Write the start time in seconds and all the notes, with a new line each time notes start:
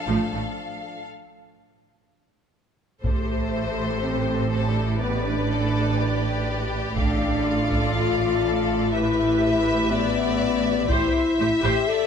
Already playing: F3 D4 A4 F5
0.08 A1 A2 F3 A3
0.33 A1 A2 A3
3.03 A1 A2 A3 G4 A4 C5, taiko
4.02 C4
4.51 C4 A4
4.69 D4
4.85 E4
5.00 B3 B4 D5
5.24 D4
5.50 A4
6.00 G4
6.96 A1 A2 D4 A4 D5 F5, taiko
7.45 F4
7.70 taiko
7.95 F4
8.45 A4
8.93 E4 G4 B4 E5
9.43 E5
9.90 B3 D5
10.89 A1 A2 E4 G4 C5 E5, taiko
11.39 A1 A2 G4 C5 E5
11.63 A1 A2 G4 C5
11.88 A4 D5